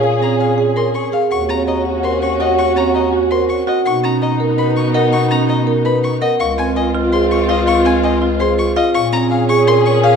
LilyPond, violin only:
\new Staff \with { instrumentName = "Violin" } { \time 7/8 \key des \major \tempo 4 = 165 r8 bes''8 f''8 r8 c'''8 des'''8 f''8 | des'''8 bes''8 ees''8 r8 c'''8 des'''8 ees''8 | des'''8 bes''8 ees''8 r8 c'''8 des'''8 ees''8 | des'''8 bes''8 ees''8 r8 ces'''8 des'''8 ees''8 |
des'''8 bes''8 ees''8 r8 ces'''8 des'''8 ees''8 | des'''8 aes''8 ees''8 r8 c'''8 des'''8 ees''8 | des'''8 aes''8 ees''8 r8 c'''8 des'''8 ees''8 | des'''8 bes''8 f''8 des'''8 c'''8 des'''8 f''8 | }